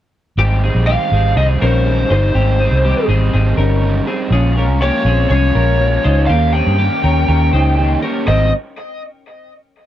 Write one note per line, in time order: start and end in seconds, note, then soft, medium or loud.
0.37 0.69 G#1 medium
0.37 0.63 G#2 medium
0.37 0.63 D#3 medium
0.37 0.63 G3 medium
0.37 0.63 C4 medium
0.37 0.62 D#4 medium
0.37 0.63 G4 medium
0.63 0.87 G3 soft
0.63 0.87 C4 medium
0.63 0.88 C4 medium
0.63 0.87 D#4 medium
0.63 0.88 G#4 medium
0.75 0.96 A#1 medium
0.87 1.12 G#2 medium
0.87 1.12 D#3 medium
0.87 1.12 G3 medium
0.87 1.12 C4 medium
0.87 1.13 C4 medium
0.87 1.11 D#4 medium
0.87 1.12 G4 medium
0.87 1.33 F5 medium
1.12 1.33 G#1 medium
1.12 1.36 G3 soft
1.12 1.36 C4 soft
1.12 1.37 C4 medium
1.12 1.37 D#4 soft
1.12 1.36 G#4 medium
1.36 1.57 C2 medium
1.36 1.61 D#3 medium
1.36 1.61 G3 soft
1.36 1.60 C4 medium
1.36 1.62 C4 medium
1.36 1.59 D#4 medium
1.36 1.61 G#4 medium
1.36 1.44 D#5 medium
1.60 2.03 A#1 medium
1.60 1.85 G3 soft
1.60 1.86 C4 soft
1.60 2.08 C#4 medium
1.60 1.85 D#4 medium
1.60 2.08 A#4 medium
1.60 2.11 C5 medium
1.86 2.10 G#2 medium
1.86 2.10 D#3 medium
1.86 2.10 G3 medium
1.86 2.10 C4 medium
1.86 2.09 D#4 medium
2.10 2.31 G1 medium
2.10 2.35 G3 soft
2.10 2.35 C4 soft
2.10 2.35 D#4 soft
2.10 2.35 D#4 medium
2.10 2.35 C5 medium
2.10 3.06 C5 medium
2.35 2.66 G#1 loud
2.35 2.60 G#2 medium
2.35 2.60 D#3 medium
2.35 2.60 G3 medium
2.35 2.60 C4 medium
2.35 2.59 C4 medium
2.35 2.58 D#4 medium
2.35 2.59 G4 medium
2.59 2.84 G3 soft
2.59 2.84 C4 soft
2.59 2.84 C4 medium
2.59 2.84 D#4 medium
2.59 2.84 G#4 medium
2.71 2.92 C2 medium
2.84 3.09 G#2 medium
2.84 3.09 D#3 medium
2.84 3.09 G3 medium
2.84 3.08 C4 medium
2.84 3.09 C4 loud
2.84 3.08 D#4 medium
2.84 3.08 G4 medium
3.08 3.29 G#1 medium
3.08 3.33 G3 soft
3.08 3.33 C4 medium
3.08 3.33 D#4 medium
3.08 3.32 G#4 medium
3.33 3.55 G#1 medium
3.33 3.58 D#3 medium
3.33 3.58 G3 medium
3.33 3.58 C4 soft
3.33 3.58 C4 medium
3.33 3.57 D#4 medium
3.33 3.57 G#4 medium
3.57 3.99 G1 medium
3.57 3.81 G3 soft
3.57 3.82 C4 medium
3.57 4.04 C#4 medium
3.57 3.82 D#4 medium
3.57 4.04 A#4 medium
3.82 4.07 G#2 medium
3.82 4.07 D#3 medium
3.82 4.07 G3 medium
3.82 4.07 C4 medium
3.82 4.05 D#4 medium
4.07 4.32 G3 soft
4.07 4.32 C4 medium
4.07 4.32 C4 soft
4.07 4.32 D#4 medium
4.07 4.31 G#4 medium
4.30 4.68 A#1 loud
4.30 4.56 A#2 medium
4.30 4.57 F3 medium
4.30 4.57 G#3 medium
4.30 4.57 C#4 medium
4.30 4.56 C#4 medium
4.30 4.55 F4 medium
4.30 4.56 G#4 medium
4.56 4.81 G#3 soft
4.56 4.82 C#4 medium
4.56 4.81 C#4 soft
4.56 4.81 F4 medium
4.56 4.81 A#4 medium
4.68 4.89 C2 medium
4.81 5.06 A#2 medium
4.81 5.06 F3 medium
4.81 5.06 G#3 medium
4.81 5.06 A#3 medium
4.81 5.05 C#4 medium
4.81 5.04 F4 medium
4.81 5.06 G4 medium
4.81 5.28 C#5 medium
5.05 5.26 A#1 medium
5.05 5.29 G#3 soft
5.05 5.31 C4 medium
5.05 5.29 C#4 soft
5.05 5.30 F4 soft
5.05 5.29 G#4 medium
5.29 5.51 C2 medium
5.29 5.54 F3 medium
5.29 5.55 G#3 medium
5.29 5.54 C#4 medium
5.29 5.55 C#4 medium
5.29 5.53 F4 medium
5.29 5.55 G#4 medium
5.29 6.25 C#5 medium
5.54 5.97 A#1 medium
5.54 5.79 G#3 soft
5.54 5.79 C#4 soft
5.54 6.02 C#4 medium
5.54 5.79 F4 soft
5.54 6.02 A#4 medium
5.79 6.04 A#2 medium
5.79 6.04 F3 medium
5.79 6.05 G#3 medium
5.79 6.04 C#4 medium
5.79 6.03 F4 medium
6.04 6.26 C#2 medium
6.04 6.29 G#3 soft
6.04 6.28 C#4 medium
6.04 6.30 D#4 medium
6.04 6.29 F4 medium
6.04 6.29 C5 medium
6.27 6.61 D#2 loud
6.27 6.54 D#3 medium
6.27 6.54 A#3 medium
6.27 6.55 A#3 medium
6.27 6.53 C#4 medium
6.27 6.52 G4 medium
6.27 6.54 G4 medium
6.27 6.54 F5 medium
6.53 6.78 A#3 soft
6.53 6.79 C4 medium
6.53 6.78 C#4 soft
6.53 6.78 G4 soft
6.53 6.78 G#4 medium
6.53 7.98 G5 medium
6.67 6.88 G2 medium
6.78 7.03 D#3 medium
6.78 7.03 A#3 medium
6.78 7.04 A#3 medium
6.78 7.03 C#4 medium
6.78 7.03 G4 medium
6.78 7.02 G4 medium
7.03 7.25 D#2 medium
7.03 7.27 A#3 soft
7.03 7.28 C#4 soft
7.03 7.28 C#4 medium
7.03 7.28 G4 soft
7.03 7.27 A#4 medium
7.28 7.50 D#2 medium
7.28 7.53 D#3 medium
7.28 7.53 A#3 medium
7.28 7.53 C#4 medium
7.28 7.52 G4 medium
7.28 7.53 A#4 medium
7.53 7.95 C#2 medium
7.53 7.77 A#3 soft
7.53 7.77 C#4 medium
7.53 8.00 D#4 medium
7.53 7.77 G4 medium
7.53 8.00 C5 medium
7.78 8.03 D#3 medium
7.78 8.03 A#3 medium
7.78 8.03 C#4 medium
7.78 8.01 G4 medium
8.02 8.27 A#3 soft
8.02 8.27 C#4 medium
8.02 8.27 C#4 soft
8.02 8.28 G4 medium
8.02 8.28 A#4 medium
8.26 8.51 G#1 medium
8.26 8.47 G#2 medium
8.26 8.47 D#3 medium
8.26 8.47 G3 medium
8.26 8.51 C4 medium
8.26 8.48 C4 medium
8.26 8.48 D#4 medium
8.26 8.51 D#5 medium